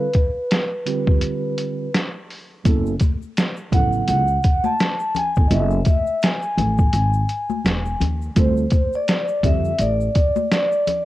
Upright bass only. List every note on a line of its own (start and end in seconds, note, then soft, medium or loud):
2.65 2.93 F#1 medium
3.72 4.00 A1 medium
4.08 4.36 C#2 medium
5.37 5.48 G1 medium
5.51 5.79 F#1 loud
6.57 6.86 A1 loud
6.93 7.21 G#1 medium
7.65 7.93 E1 medium
8.00 8.28 D#2 medium
8.36 8.64 D2 loud
9.43 9.71 F2 medium
9.79 10.07 A1 loud